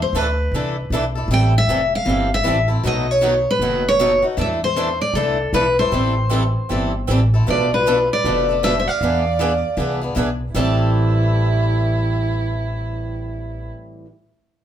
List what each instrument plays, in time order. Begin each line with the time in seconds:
0.02 steel-string acoustic guitar C5
0.13 upright bass D2, steel-string acoustic guitar E3 A3 D4 E4 A4
0.17 steel-string acoustic guitar B4
0.52 upright bass C2, steel-string acoustic guitar E3 A3 D4
0.56 steel-string acoustic guitar E4 A4
0.90 upright bass B1, steel-string acoustic guitar E3 A3 D4 E4 A4
1.15 steel-string acoustic guitar D4 E4 A4
1.28 upright bass A1, steel-string acoustic guitar E3 G3 C4 E4 A4
1.34 steel-string acoustic guitar G5
1.58 steel-string acoustic guitar E5
1.67 upright bass F1, steel-string acoustic guitar E3 G3 C4 E4 A4
1.95 steel-string acoustic guitar F5
2.05 upright bass G1, steel-string acoustic guitar E3 G3 C4 E4 A4
2.34 steel-string acoustic guitar E5
2.44 upright bass A1, steel-string acoustic guitar E3 G3 C4 E4 A4
2.68 steel-string acoustic guitar C4 E4 A4
2.83 upright bass B1, steel-string acoustic guitar B2 D#3 F#3 A3 B3 D#4 F#4 A4 D#5
3.11 steel-string acoustic guitar C#5
3.21 steel-string acoustic guitar B2 D#3 F#3 A3 B3 D#4 F#4 A4
3.51 steel-string acoustic guitar B4
3.59 upright bass F#1, steel-string acoustic guitar B2 D#3 F#3 A3 B3 D#4 F#4 A4
3.89 steel-string acoustic guitar C#5
3.99 steel-string acoustic guitar B2 D#3 F#3 A3 B3 D#4 F#4 A4
4.22 steel-string acoustic guitar A3 D#4 F#4
4.37 upright bass E2, steel-string acoustic guitar E3 A3 D4 E4 A4
4.41 steel-string acoustic guitar E5
4.64 steel-string acoustic guitar C5
4.76 steel-string acoustic guitar E3 A3 D4 E4 A4
5.01 steel-string acoustic guitar D5
5.14 upright bass C2, steel-string acoustic guitar E3 A3 D4 E4 A4
5.53 upright bass B1, steel-string acoustic guitar E3 A3 D4 E4 A4 B4
5.79 steel-string acoustic guitar D4 E4 A4 C5
5.92 upright bass A1, steel-string acoustic guitar E3 G3 C4 E4 A4
6.31 steel-string acoustic guitar E3 G3 C4 E4 A4
6.70 upright bass G1, steel-string acoustic guitar E3 G3 C4 E4 A4
7.08 upright bass A1, steel-string acoustic guitar E3 G3 C4 E4 A4
7.34 steel-string acoustic guitar C4 E4 A4
7.48 upright bass B1, steel-string acoustic guitar B2 F3 A3 D4 A4 B4 D5, violin B4
7.73 violin F4, steel-string acoustic guitar B4
7.87 steel-string acoustic guitar B2 F3 A3 D4 A4 B4
8.11 violin B4, steel-string acoustic guitar D5
8.24 upright bass F1, steel-string acoustic guitar B2 F3 A3 D4 A4 B4
8.49 steel-string acoustic guitar A3 D4 A4
8.62 steel-string acoustic guitar B2 F3 A3 D4 A4 B4 E5, violin B4
8.78 violin C5, steel-string acoustic guitar E5
8.86 violin D5, steel-string acoustic guitar F5
9.01 upright bass E2, steel-string acoustic guitar E3 B3 D4 G#4 B4
9.39 steel-string acoustic guitar E3 B3 D4 G#4 B4
9.77 upright bass C2, steel-string acoustic guitar E3 B3 D4 G#4 B4
10.01 steel-string acoustic guitar B3 D4 G#4
10.15 upright bass B1, steel-string acoustic guitar E3 B3 D4 G#4 B4
10.54 upright bass A1, steel-string acoustic guitar A2 E3 G3 C4 E4 A5, violin E4
10.58 steel-string acoustic guitar A4